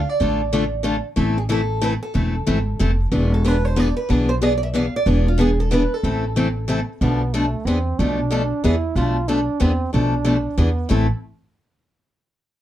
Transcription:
0.09 D5
0.20 A1 D3 A3 D4 F4 A4
0.53 D3 A3 D4 F4 A4
0.83 D3 A3 D4 F4 A4
1.16 A1 E3 A3 C4 E4 A4
1.38 G#4
1.49 E3 A3 C4 E4 A4
1.81 E3 A3 C4 E4 A4 B4
2.03 A4
2.14 E1 E3 A3 C4 E4 A4
2.47 G#1 E3 A3 C4 E4 A4
2.79 F1 E3 A3 C4 E4 A4
3.12 E1 E3 B3 D4 G#4
3.34 A4
3.44 E3 B3 D4 G#4 B4
3.65 C5
3.76 E3 B3 D4 G#4 D5
3.97 B4
4.09 B1 E3 B3 D4 G#4
4.29 C5
4.42 E3 B3 D4 G#4 D5
4.57 D5
4.63 E5
4.74 E3 B3 D4 G#4 F5
4.96 D5
5.06 E1 E3 B3 D4 G#4
5.28 F4
5.38 E3 B3 D4 G#4
5.60 A4
5.71 E3 B3 D4 G#4 B4
5.94 A4
6.03 A1 E3 A3 C4 E4 A4
6.36 E3 A3 C4 E4 A4
6.68 E3 A3 C4 E4 A4
7.01 B1 B2 F3 A3 B3 D4 A4
7.33 B2 F3 A3 D4 A4
7.65 E2 E3 B3 C4 D4 G#4
7.99 B1 B2 F3 A3 D4 A4
8.30 B2 F3 A3 D4 A4
8.64 E2 E3 B3 D4 E4 G#4
8.95 B1 B2 F3 A3 D4 F4 A4
9.28 B2 F3 A3 D4 A4
9.60 E2 E3 B3 C4 D4 G#4
9.93 B1 B2 F3 A3 D4 A4
10.24 B2 F3 A3 D4 A4
10.58 E2 E3 B3 D4 G#4
10.89 A1 A2 E3 A3 C4 E4 A4

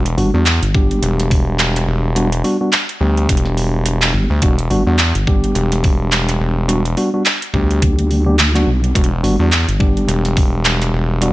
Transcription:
Already playing: E1
0.06 closed hi-hat
0.18 G1 G3 B3 D4 F#4, open hi-hat
0.34 E2 G3 B3 D4 F#4
0.46 clap, closed hi-hat
0.62 G1, closed hi-hat
0.74 G3 B3 D4 G4, kick
0.91 closed hi-hat
1.03 E1, closed hi-hat
1.20 snare, closed hi-hat
1.31 kick, open hi-hat
1.59 clap, closed hi-hat
1.76 clap, closed hi-hat
1.87 E1
2.16 G3 B3 D4 F#4, closed hi-hat
2.32 closed hi-hat
2.44 G3 B3 D4 F#4, open hi-hat
2.61 G3 B3 D4 F#4
2.73 clap, closed hi-hat
2.89 closed hi-hat
3.01 D2 G3 B3 D4 G4
3.17 closed hi-hat
3.29 E1, kick, closed hi-hat
3.37 closed hi-hat
3.45 snare
3.57 open hi-hat
3.86 closed hi-hat
4.02 clap, closed hi-hat
4.14 G1
4.30 D2
4.42 E1 G3 B3 D4 F#4, kick, closed hi-hat
4.59 closed hi-hat
4.71 G1 G3 B3 D4 F#4, open hi-hat
4.87 E2 G3 B3 D4 F#4
4.99 clap, closed hi-hat
5.15 G1, closed hi-hat
5.27 G3 B3 D4 G4, kick
5.44 closed hi-hat
5.55 E1, closed hi-hat
5.72 snare, closed hi-hat
5.84 kick, open hi-hat
6.12 clap, closed hi-hat
6.29 clap, closed hi-hat
6.40 E1
6.69 G3 B3 D4 F#4, closed hi-hat
6.85 closed hi-hat
6.97 G3 B3 D4 F#4, open hi-hat
7.14 G3 B3 D4 F#4
7.26 clap, closed hi-hat
7.42 closed hi-hat
7.54 D2 G3 B3 D4 G4, kick
7.71 closed hi-hat
7.82 D2, kick, closed hi-hat
7.99 closed hi-hat
8.11 open hi-hat
8.26 G3 B3 D4 G4
8.39 clap, closed hi-hat
8.55 G3 B3 D4 F#4, clap, closed hi-hat
8.67 B1
8.84 closed hi-hat
8.95 E1 G3 B3 D4 F#4, kick, closed hi-hat
9.04 closed hi-hat
9.23 G1 G3 B3 D4 F#4, open hi-hat
9.40 E2 G3 B3 D4 F#4
9.52 clap, closed hi-hat
9.68 G1, closed hi-hat
9.80 G3 B3 D4 G4, kick
9.97 closed hi-hat
10.08 E1, closed hi-hat
10.25 snare, closed hi-hat
10.37 kick, open hi-hat
10.65 clap, closed hi-hat
10.82 clap, closed hi-hat
10.93 E1
11.22 G3 B3 D4 F#4, closed hi-hat

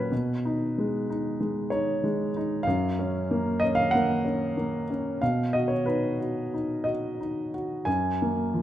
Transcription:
Already playing: A#2 F#3 A#3 C#4 B4 C#5 D#5
0.12 B2
0.45 D#4
0.78 G#3
1.10 D#4
1.40 G#3
1.70 D#4 C#5
2.04 G#3
2.36 D#4
2.63 F5
2.67 F#2
2.99 C#4
3.31 A#3
3.60 C#4 D#5
3.75 F5
3.91 A#3 F#5
4.25 C#4
4.57 A#3
4.90 C#4
5.22 B2 F5
5.53 F#4 D#5
5.68 C#5
5.86 D#4 B4
6.20 F#4
6.54 D#4
6.84 F#4 D#5
7.21 D#4
7.54 F#4
7.85 F#2 G#5
8.22 A#3
8.54 F3

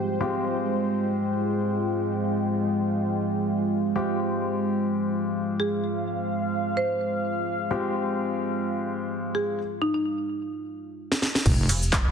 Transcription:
Already playing: G#3 C4 F4 G4 C5 G5
0.21 G#3 C4 F4 G4
3.96 G#3 C4 F4 G4
4.32 F5
5.60 G#4
6.77 C5
7.71 G#3 C4 F4 G4
9.35 G#4
9.82 D#4
9.94 D#4
11.12 snare
11.22 snare
11.35 snare
11.46 F1 G#3 F4 G4 C5, kick, crash, tambourine, sub drop, cabasa
11.69 F1, open hi-hat, tambourine, cabasa
11.82 cabasa
11.93 kick, snare, clap, tambourine, cabasa
12.05 D#1

